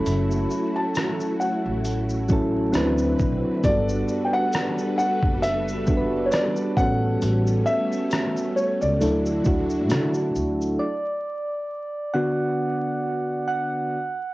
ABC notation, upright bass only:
X:1
M:4/4
L:1/16
Q:"Swing 16ths" 1/4=67
K:D
V:1 name="Upright bass" clef=bass
F,,,2 z4 z A,,,4- A,,, D,,2 B,,, z | G,,,2 z4 z F,,,4- F,,, z2 A,,,2 | A,,,2 z4 z C,, D,,2 D,,2 D,2 D,,2 | z16 |]